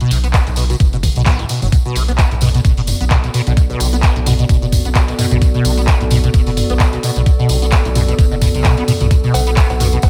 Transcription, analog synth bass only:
0.11 0.40 B1 medium
0.47 0.74 B1 loud
0.80 1.09 F#1 loud
1.16 1.44 B1 medium
1.62 1.69 F#1 medium
1.95 2.24 B1 medium
2.31 2.59 B1 loud
2.65 2.93 F#1 loud
3.01 3.28 B1 medium
3.47 3.74 B1 medium
3.80 4.09 B1 loud
4.16 4.44 B1 loud
4.49 4.78 F#1 loud
4.85 5.13 B1 medium
5.31 5.59 B1 medium
5.65 5.93 B1 medium
6.01 6.28 B1 loud
6.34 6.63 F#1 loud
6.70 6.97 B1 medium
7.16 7.44 B1 medium
7.49 7.78 B1 medium
7.85 8.13 B1 loud
8.19 8.47 F#1 loud
8.54 8.82 B1 medium
9.01 9.28 B1 medium
9.34 9.63 B1 medium
9.70 9.97 B1 loud
10.03 10.10 F#1 loud

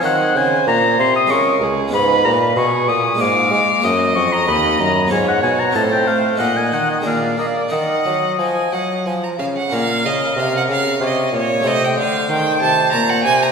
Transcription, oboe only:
0.05 0.39 F#5 loud
0.37 0.67 G#5 loud
0.68 0.99 A#5 loud
1.00 1.15 C6 loud
1.16 1.32 D#6 loud
1.31 1.63 C#6 loud
1.94 2.24 B5 loud
2.25 2.32 A#5 loud
2.43 2.59 B5 loud
2.58 2.90 C#6 loud
2.89 3.22 D#6 loud
3.21 3.52 D6 loud
3.53 3.86 D6 loud
3.84 4.17 D#6 loud
4.15 4.34 C#6 loud
4.33 4.47 A#5 loud
4.48 4.81 B5 loud
4.80 5.12 A#5 loud
5.12 5.28 G#5 loud
5.28 5.43 F#5 loud
5.43 5.61 G#5 loud
5.60 5.75 A#5 loud
5.76 5.83 A5 loud
5.92 6.09 G5 loud
6.08 6.41 F5 medium
6.39 6.58 F#5 loud
6.57 6.75 G#5 medium
6.73 6.89 F#5 medium
6.91 6.98 D#5 medium
7.07 7.38 F5 medium
7.39 7.46 D#5 medium
7.57 7.64 D5 medium
7.72 9.03 D#5 medium
9.72 11.03 A#4 loud
11.01 11.65 C#5 medium
11.66 13.52 C5 medium

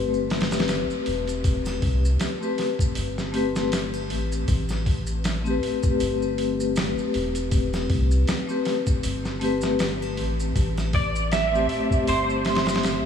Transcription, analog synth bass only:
0.00 0.86 G1 medium
1.08 1.80 E1 medium
1.83 2.17 C2 medium
2.98 4.12 G1 medium
4.11 4.45 A1 medium
4.49 5.59 A1 loud
6.02 6.94 G1 medium
7.15 7.88 E1 medium
7.90 8.24 C2 medium
9.05 10.21 G1 medium
10.19 10.53 A1 medium
10.56 11.67 A1 loud
12.09 13.01 G1 medium

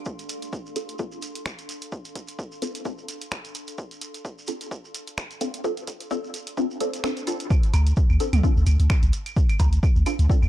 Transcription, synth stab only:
0.76 0.83 C4 medium
0.76 0.83 D4 medium
0.76 0.83 F4 medium
0.76 0.83 A4 loud
0.99 1.07 C4 medium
0.99 1.07 D4 medium
0.99 1.07 F4 medium
0.99 1.07 A4 medium
2.62 2.69 C4 medium
2.62 2.69 D4 medium
2.62 2.69 F4 medium
2.62 2.69 A4 loud
2.85 2.93 C4 medium
2.85 2.93 D4 medium
2.85 2.93 F4 medium
2.85 2.93 A4 medium
4.48 4.55 C4 medium
4.48 4.55 D4 medium
4.48 4.55 F4 medium
4.48 4.55 A4 medium
5.41 5.48 C4 medium
5.41 5.48 D4 medium
5.41 5.48 F4 medium
5.41 5.48 A4 loud
5.64 5.72 C4 medium
5.64 5.72 D4 medium
5.64 5.72 F4 medium
5.64 5.72 A4 loud
6.11 6.18 C4 loud
6.11 6.18 D4 medium
6.11 6.18 F4 medium
6.11 6.18 A4 loud
6.57 6.65 C4 loud
6.57 6.65 D4 medium
6.57 6.65 F4 medium
6.57 6.65 A4 loud
6.81 6.88 C4 loud
6.81 6.88 D4 medium
6.81 6.88 F4 medium
6.81 6.88 A4 loud
7.04 7.11 C4 loud
7.04 7.11 D4 medium
7.04 7.11 F4 medium
7.04 7.11 A4 loud
7.27 7.34 C4 loud
7.27 7.34 D4 medium
7.27 7.34 F4 medium
7.27 7.34 A4 loud
8.20 8.28 C4 medium
8.20 8.28 D4 medium
8.20 8.28 F4 medium
8.20 8.28 A4 loud
8.44 8.51 C4 medium
8.44 8.51 D4 medium
8.44 8.51 F4 medium
8.44 8.51 A4 loud
10.06 10.14 C4 medium
10.06 10.14 D4 medium
10.06 10.14 F4 medium
10.06 10.14 A4 loud
10.30 10.37 C4 medium
10.30 10.37 D4 medium
10.30 10.37 F4 medium
10.30 10.37 A4 loud

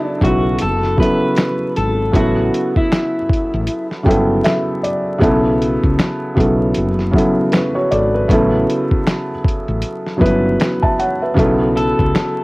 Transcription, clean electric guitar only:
0.00 0.04 E4 medium
0.04 0.25 D4 medium
0.24 0.61 F#4 medium
0.62 1.00 A4 loud
1.00 1.72 B4 loud
1.77 2.16 A4 medium
2.16 2.77 F#4 medium
2.77 3.87 E4 medium
11.77 12.44 A4 medium

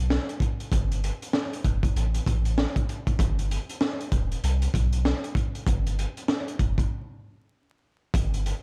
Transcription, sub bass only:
0.00 0.19 B1 loud
0.72 1.11 G1 loud
1.65 1.89 F#1 medium
1.96 2.20 A1 loud
2.27 2.66 A1 loud
3.19 3.59 G1 loud
4.12 4.37 E1 medium
4.43 4.68 C2 loud
4.74 5.13 B1 loud
5.67 6.06 G1 loud
6.60 6.84 F#1 medium
8.14 8.53 G1 loud

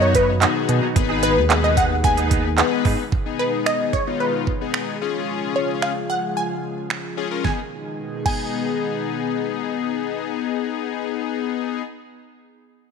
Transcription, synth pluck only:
0.02 0.15 C#5 medium
0.15 0.65 B4 medium
1.23 1.61 B4 medium
1.64 1.70 D#5 medium
1.77 2.05 F#5 loud
2.05 2.81 G#5 loud
3.39 3.51 B4 medium
3.66 3.94 D#5 loud
3.93 4.21 C#5 loud
4.20 4.71 B4 medium
5.56 5.83 C#5 medium
5.82 6.10 F5 medium
6.10 6.37 F#5 loud
6.37 7.14 G#5 loud
7.45 7.60 G#5 medium
8.26 11.82 G#5 medium

